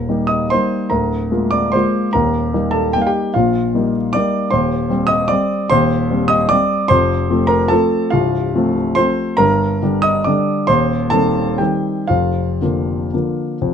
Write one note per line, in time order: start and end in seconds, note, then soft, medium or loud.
0.00 0.54 D#1 soft
0.00 0.53 D#2 medium
0.00 0.26 A#4 medium
0.00 0.29 A#5 medium
0.09 0.48 G3 soft
0.09 0.48 A#3 soft
0.09 0.48 D#4 soft
0.27 0.49 D#5 medium
0.27 0.50 D#6 medium
0.50 0.88 G3 soft
0.50 0.89 A#3 soft
0.50 0.89 D#4 soft
0.50 0.89 C5 medium
0.50 0.91 C6 medium
0.90 1.30 D1 soft
0.90 1.30 D2 medium
0.90 1.48 A#4 medium
0.90 1.51 A#5 medium
1.31 1.70 G#3 soft
1.31 1.70 A#3 soft
1.31 1.71 F4 soft
1.51 1.72 D5 medium
1.51 1.73 D6 medium
1.72 2.10 G#3 soft
1.72 2.11 A#3 soft
1.72 2.11 F4 soft
1.72 2.11 C5 medium
1.72 2.13 C6 medium
2.13 2.54 D#1 soft
2.13 2.54 D#2 medium
2.13 2.71 A#4 medium
2.13 2.74 A#5 medium
2.54 2.91 G3 soft
2.54 2.91 A#3 soft
2.54 2.91 D#4 medium
2.71 2.92 A4 medium
2.71 2.93 A5 medium
2.93 3.32 G3 soft
2.93 3.32 A#3 soft
2.93 3.32 D#4 soft
2.93 3.01 G5 medium
3.02 3.08 F5 medium
3.07 3.33 G4 medium
3.07 3.35 G5 medium
3.34 3.74 A#1 soft
3.34 3.74 A#2 medium
3.34 3.91 F4 medium
3.34 3.94 F5 medium
3.75 4.10 G3 soft
3.75 4.11 A#3 soft
3.75 4.11 D#4 soft
4.13 4.49 G3 soft
4.13 4.50 A#3 soft
4.13 4.50 D#4 soft
4.13 4.50 D5 medium
4.13 4.52 D6 medium
4.51 4.89 D#1 medium
4.51 4.89 D#2 medium
4.51 5.06 C5 medium
4.51 5.09 C6 medium
4.90 5.27 G3 medium
4.90 5.27 C4 medium
5.07 5.28 D#5 medium
5.07 5.29 D#6 medium
5.28 5.67 G3 soft
5.28 5.67 C4 medium
5.28 5.67 D5 medium
5.28 5.70 D6 medium
5.70 6.09 D#1 medium
5.70 6.09 D#2 medium
5.70 6.26 C5 medium
5.70 6.29 C6 loud
6.11 6.47 G3 soft
6.11 6.47 C4 medium
6.28 6.49 D#5 medium
6.28 6.50 D#6 loud
6.49 6.87 G3 soft
6.49 6.87 C4 medium
6.49 6.87 D5 medium
6.49 6.90 D6 loud
6.88 7.29 F1 medium
6.88 7.29 F2 medium
6.88 7.45 C5 medium
6.88 7.49 C6 loud
7.30 7.67 F3 medium
7.30 7.67 A3 medium
7.30 7.67 C4 medium
7.47 7.69 A#4 medium
7.47 7.70 A#5 medium
7.68 8.09 F3 soft
7.68 8.09 A3 soft
7.68 8.09 C4 medium
7.68 8.09 A4 medium
7.68 8.12 A5 medium
8.10 8.54 C1 medium
8.10 8.54 C2 medium
8.10 8.72 F4 medium
8.10 8.75 F5 medium
8.54 8.94 F3 medium
8.54 8.94 A3 medium
8.54 8.94 C4 medium
8.95 9.35 F3 soft
8.95 9.35 A3 soft
8.95 9.36 C4 medium
8.95 9.36 C5 medium
8.95 9.38 C6 medium
9.37 9.81 G1 medium
9.37 9.80 G2 medium
9.37 10.00 A#4 medium
9.37 10.03 A#5 loud
9.83 10.23 D3 soft
9.83 10.23 G3 medium
9.83 10.23 D4 medium
10.02 10.24 D#5 medium
10.02 10.25 D#6 medium
10.24 10.65 D3 soft
10.24 10.66 G3 soft
10.24 10.66 D4 soft
10.24 10.66 D5 medium
10.24 10.68 D6 medium
10.67 11.11 D#1 medium
10.67 11.11 D#2 medium
10.67 11.08 C5 medium
10.67 11.11 C6 medium
11.10 11.56 D#3 soft
11.10 11.56 G3 soft
11.10 11.56 C4 soft
11.10 11.56 A4 medium
11.10 11.59 A5 loud
11.58 12.06 D#3 soft
11.58 12.06 G3 soft
11.58 12.06 C4 soft
11.58 12.06 G4 medium
11.58 12.09 G5 medium
12.07 12.61 F1 soft
12.07 12.60 F2 medium
12.07 13.74 F4 medium
12.07 13.74 F5 medium
12.62 13.09 D3 soft
12.62 13.09 F3 soft
12.62 13.10 A#3 soft
13.14 13.57 D3 soft
13.14 13.57 F3 soft
13.14 13.57 A#3 soft
13.61 13.74 F1 soft
13.61 13.74 F2 medium